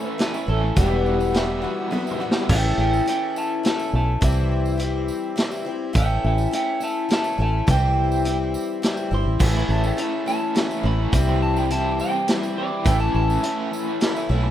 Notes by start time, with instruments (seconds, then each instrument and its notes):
Already playing: overdriven electric guitar A2 E3, twelve-string acoustic guitar E3 A3 C#4 E4, accordion A4 E5 C#6, clean electric guitar C#5
0.04 overdriven electric guitar A3 C#4 E4
0.09 clean electric guitar B4
0.18 twelve-string acoustic guitar E3 A3 C#4 E4, clean electric guitar B4, snare, closed hi-hat
0.32 overdriven electric guitar A3 C#4 E4, tambourine
0.46 fingered electric bass A1, overdriven electric guitar E3 A3 C#4 E4, twelve-string acoustic guitar A3 C#4 E4, clean electric guitar A4
0.61 overdriven electric guitar A3 C#4 E4
0.75 fingered electric bass E1, overdriven electric guitar E2 B2 E3 G3 B3 E4, twelve-string acoustic guitar E2 B2 E3 G3 B3, clean electric guitar G4, accordion G4 F#5 E6, kick, closed hi-hat, tambourine
0.90 overdriven electric guitar E3 G3 B3 E4
1.06 tambourine
1.19 overdriven electric guitar E3 G3 B3 E4, tambourine
1.33 overdriven electric guitar E2 B2 E3 G3 B3 E4, twelve-string acoustic guitar E3 G3 B3 F#4, snare, closed hi-hat
1.62 overdriven electric guitar E3 G3 B3 E4, twelve-string acoustic guitar E3 G3 B3 F#4
1.77 overdriven electric guitar E3 G3 B3 E4
1.91 twelve-string acoustic guitar E3 G3 B3 F#4, high tom, tambourine
2.05 overdriven electric guitar E3 G3 B3 E4, tambourine
2.11 mid tom
2.19 overdriven electric guitar E3 G3 B3 E4, twelve-string acoustic guitar E3 G3 B3 F#4
2.31 overdriven electric guitar E4, snare
2.35 overdriven electric guitar E3 G3 B3
2.49 fingered electric bass A1, twelve-string acoustic guitar A2 E3 A3 C#4 E4, accordion C#4 A4 E5, clean electric guitar E5 G5, kick, crash, tambourine
2.78 fingered electric bass A1, clean electric guitar E5 G5, tambourine
2.93 tambourine
3.06 twelve-string acoustic guitar E3 A3 C#4 E4, clean electric guitar E5 G5, closed hi-hat
3.36 clean electric guitar E5 A5, tambourine
3.63 twelve-string acoustic guitar E3 A3 C#4 E4, clean electric guitar E5 A5, snare, closed hi-hat
3.79 tambourine
3.93 fingered electric bass B1, clean electric guitar E5 A5
4.21 fingered electric bass C2, twelve-string acoustic guitar C3 E3 G3 C4 E4, accordion C4 G4, clean electric guitar E5, kick, closed hi-hat, tambourine
4.51 tambourine
4.66 tambourine
4.77 twelve-string acoustic guitar E3 G3 C4 E4, closed hi-hat
5.08 tambourine
5.36 twelve-string acoustic guitar E3 G3 C4 E4, snare, closed hi-hat
5.51 tambourine
5.65 twelve-string acoustic guitar G3 C4 E4
5.93 fingered electric bass A1, twelve-string acoustic guitar A2 E3 A3 C#4 E4, accordion C#4 A4, kick, closed hi-hat, tambourine
5.97 clean electric guitar E5 G5
6.24 fingered electric bass A1, clean electric guitar E5 G5, tambourine
6.38 tambourine
6.51 twelve-string acoustic guitar E3 A3 C#4 E4, clean electric guitar E5 G5, closed hi-hat
6.80 twelve-string acoustic guitar A3 C#4 E4, clean electric guitar E5 A5, tambourine
7.09 twelve-string acoustic guitar E3 A3 C#4 E4, snare, closed hi-hat
7.13 clean electric guitar E5 A5
7.24 tambourine
7.38 fingered electric bass A1, twelve-string acoustic guitar A3 C#4 E4, clean electric guitar E5
7.42 clean electric guitar A5
7.67 fingered electric bass C2, twelve-string acoustic guitar C3 E3 G3 C4 E4, accordion C4 G4, kick, closed hi-hat, tambourine
7.71 clean electric guitar G5
8.12 tambourine
8.25 twelve-string acoustic guitar E3 G3 C4 E4, closed hi-hat
8.54 tambourine
8.82 twelve-string acoustic guitar E3 G3 C4 E4, snare, closed hi-hat
8.97 tambourine
9.11 fingered electric bass G1, twelve-string acoustic guitar G3 C4 E4, clean electric guitar C6, tambourine
9.26 fingered electric bass A1
9.39 fingered electric bass A1, twelve-string acoustic guitar A2 E3 A3 C#4 E4, overdriven electric guitar A2 E3 A3 C#4 E4, accordion C#4 A4, kick, crash, tambourine
9.54 overdriven electric guitar A3 C#4 E4, clean electric guitar B5
9.69 fingered electric bass A1, clean electric guitar A5, tambourine
9.84 overdriven electric guitar A3 C#4 E4, clean electric guitar G5, tambourine
9.97 overdriven electric guitar A2 E3 A3 C#4 E4, twelve-string acoustic guitar E3 A3 C#4 E4, clean electric guitar A5, closed hi-hat
10.26 overdriven electric guitar E3 A3 C#4 E4, twelve-string acoustic guitar A3 C#4 E4, clean electric guitar A5, tambourine
10.42 overdriven electric guitar A3 C#4 E4
10.55 twelve-string acoustic guitar E3 A3 C#4 E4, snare, closed hi-hat
10.70 overdriven electric guitar A3 C#4 E4, tambourine
10.83 fingered electric bass A1, overdriven electric guitar E3 A3 C#4 E4, twelve-string acoustic guitar A3 C#4 E4, clean electric guitar B5
10.99 overdriven electric guitar A3 C#4 E4
11.12 fingered electric bass C2, twelve-string acoustic guitar C3 E3 G3 C4 E4, overdriven electric guitar C3 E3 G3 C4 E4, accordion C4 G4, kick, closed hi-hat, tambourine
11.27 overdriven electric guitar G3 C4 E4, clean electric guitar B5
11.42 clean electric guitar A5, tambourine
11.56 overdriven electric guitar G3 C4 E4, clean electric guitar G5, tambourine
11.70 overdriven electric guitar C3 E3 G3 C4 E4, twelve-string acoustic guitar E3 G3 C4 E4, clean electric guitar A5, closed hi-hat
11.98 overdriven electric guitar E3 G3 C4 E4, clean electric guitar G5, tambourine
12.12 overdriven electric guitar G3 C4 E4
12.28 twelve-string acoustic guitar E3 G3 C4 E4, snare, closed hi-hat
12.41 overdriven electric guitar G3 C4 E4, tambourine
12.56 overdriven electric guitar E3 G3 C4 E4, clean electric guitar D5
12.70 overdriven electric guitar G3 C4 E4
12.84 fingered electric bass A1, overdriven electric guitar A2 E3 A3 C#4 E4, twelve-string acoustic guitar A2 E3 A3 C#4 E4, accordion C#4 A4 E5, clean electric guitar G5, kick, closed hi-hat, tambourine
12.98 overdriven electric guitar A3 C#4 E4, clean electric guitar A5
13.14 fingered electric bass A1, clean electric guitar A5, tambourine
13.27 overdriven electric guitar A3 C#4 E4, tambourine
13.42 overdriven electric guitar A2 E3 A3 C#4 E4, twelve-string acoustic guitar E3 A3 C#4 E4, closed hi-hat
13.71 overdriven electric guitar E3 A3 C#4 E4, tambourine
13.85 overdriven electric guitar A3 C#4 E4
14.00 twelve-string acoustic guitar E3 A3 C#4 E4, snare, closed hi-hat
14.15 overdriven electric guitar A3 C#4 E4, tambourine
14.29 fingered electric bass B1, overdriven electric guitar E3 A3 C#4 E4, twelve-string acoustic guitar A3 C#4 E4
14.43 overdriven electric guitar A3 C#4 E4